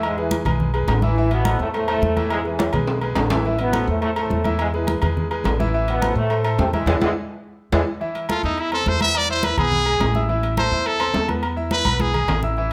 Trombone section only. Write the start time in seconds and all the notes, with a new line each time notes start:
0.04 G#2 G#3
0.19 E3 E4
0.90 D3 D4
1.04 E3 E4
1.33 B2 B3
1.62 A2 A3
1.76 A2 A3
1.89 A2 A3
2.32 G#2 G#3
2.47 E3 E4
3.18 D3 D4
3.31 E3 E4
3.61 B2 B3
3.89 A2 A3
4.03 A2 A3
4.18 A2 A3
4.61 G#2 G#3
4.75 E3 E4
5.46 D3 D4
5.61 E3 E4
5.90 B2 B3
6.17 A2 A3
6.60 C3 C4
6.74 G#2 G#3
6.88 D3 E3 G#3
7.02 D3 E3 G#3
7.73 D3 E3 G#3